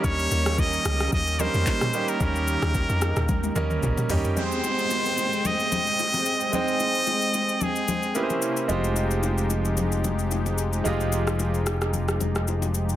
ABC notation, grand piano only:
X:1
M:4/4
L:1/8
Q:"Swing 16ths" 1/4=111
K:Ab
V:1 name="Grand piano"
[G,B,DEB]2 z3 [G,B,DEB]2 [G,B,DEG] | [G,B,DEB]3 z2 [G,B,DEB]2 [G,B,DEG] | [A,CEGc]8 | [A,CEcg]6 [B,D=EG_c=c]2 |
[A,EFGc]8 | [A,EFGe]8 |]